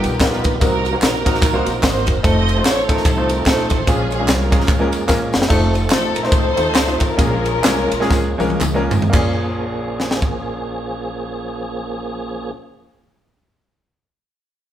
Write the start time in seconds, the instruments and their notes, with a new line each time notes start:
Already playing: grand piano G2 B3 D#4 F4 G4 A#4, tonewheel organ G3 B3 D#4 F4 G4, string section B3 G4 A#4
0.04 upright bass B1, ride bell, tambourine
0.20 upright bass A#1, grand piano B3 D#4 F4 G4 A#4, string section D#4 F4 B4, kick, snare, clap, ride bell, tambourine
0.32 snare
0.44 upright bass A#1, kick, ride bell, tambourine
0.60 upright bass C2, grand piano C3 A#3 C4 D#4 F#4 A#4, tonewheel organ F#3 A#3 C4 D#4 A#4, string section D#4 F#4 A#4, kick, ride bell, tambourine
0.85 ride bell, tambourine
0.93 grand piano A#3 C4 D#4 F#4 A#4
1.02 upright bass A#1, string section D#4 F#4 A#4, snare, clap, ride bell, tambourine
1.25 grand piano A#3 C4 D#4 F#4 A#4, kick, ride bell, tambourine
1.34 snare
1.42 upright bass C2, kick, clap, ride bell, tambourine
1.54 grand piano A#3 C4 D#4 F#4 C5
1.66 upright bass A#1, ride bell, tambourine
1.83 upright bass G#1, grand piano A#3 C4 D#4 F#4 C5, string section D#4 F#4 C5, kick, snare, clap, ride bell, tambourine
2.06 upright bass F#1, kick, ride bell, tambourine
2.23 upright bass F1, tonewheel organ F3 A3 C4 D#4 A4, grand piano A3 C4 D#4 F4 A4, string section A4 C5 D#5, kick, ride bell, tambourine
2.48 ride bell, tambourine
2.56 grand piano A3 C4 D#4 F4 C5
2.65 string section C#5, snare, clap, ride bell, tambourine
2.88 grand piano A3 C4 D#4 F4 A4, string section A#4, kick, ride bell, tambourine
2.97 snare
3.05 upright bass C2, string section C4 D#4 A4, kick, clap, ride bell, tambourine
3.17 grand piano A3 C4 D#4 F4 C5
3.29 string section A#4, ride bell, tambourine
3.46 upright bass A#1, grand piano A3 C4 D#4 F4 A4, string section D#4 A4 C5, kick, snare, clap, ride bell, tambourine
3.58 snare
3.70 upright bass A1, kick, ride bell, tambourine
3.87 upright bass A#1, grand piano A#2 G#3 A#3 C#4 F4 G#4, tonewheel organ F3 G#3 A#3 C#4 G#4, string section C#4 F4 G#4, kick, ride bell, tambourine
4.11 string section G#4, ride bell, tambourine
4.19 grand piano G#3 A#3 C#4 F4 G#4
4.28 upright bass C2, string section C#4 F4 A#4, snare, clap, ride bell, tambourine
4.50 grand piano G#3 A#3 C#4 F4 G#4, kick, ride bell, tambourine
4.60 snare
4.68 upright bass C#2, kick, clap, ride bell, tambourine
4.79 grand piano G#3 A#3 C#4 F4 A#4
4.92 upright bass F2, ride bell, tambourine
5.07 upright bass A#1, grand piano G#3 A#3 C#4 F4 A#4, kick, snare, clap, tambourine
5.33 upright bass F#1, snare, tambourine
5.42 snare
5.49 upright bass F1, tonewheel organ F3 A3 C4 D#4 A4, grand piano A3 C4 D#4 F4 A4, kick, crash, tambourine
5.74 ride bell, tambourine
5.90 upright bass A1, grand piano A3 C4 D#4 F4 C5, string section A4, snare, clap, ride bell, tambourine
6.15 upright bass A#1, string section A#4, ride bell, tambourine
6.23 grand piano A3 C4 D#4 F4 C5, snare
6.32 upright bass C#2, string section D#4 A4 C5, kick, ride bell, tambourine
6.56 upright bass D#2, grand piano A3 C4 D#4 F4 A4, ride bell, tambourine
6.75 upright bass C#2, snare, clap, ride bell, tambourine
6.87 grand piano A3 C4 D#4 F4 C5, snare
7.00 upright bass A1, string section C#4 F4 A#4, kick, ride bell, tambourine
7.17 upright bass A#1, grand piano A#2 G#3 A#3 C#4 F4 G#4, tonewheel organ F3 G#3 A#3 C4 G#4, kick, ride bell, tambourine
7.24 tonewheel organ C#4
7.45 ride bell, tambourine
7.62 upright bass C2, grand piano G#3 A#3 C#4 F4 A#4, snare, clap, ride bell, tambourine
7.91 upright bass A#1, ride bell, tambourine
8.00 grand piano G#3 A#3 C#4 F4 G#4, snare
8.10 upright bass C#2, kick, snare, tambourine
8.38 upright bass C2, grand piano G#3 A#3 C#4 F4 A#4, high tom, tambourine
8.50 high tom
8.60 upright bass C#2, clap, mid tom, tambourine
8.74 grand piano G#3 A#3 C#4 F4 A#4
8.91 upright bass G#1, floor tom, tambourine
9.02 floor tom
9.10 grand piano A#1 A#3 C#4, upright bass A#1, tonewheel organ F3 A#3 C#4 G#4, kick, crash
9.14 grand piano F4 G#4, clap
10.00 snare
10.11 snare
10.22 kick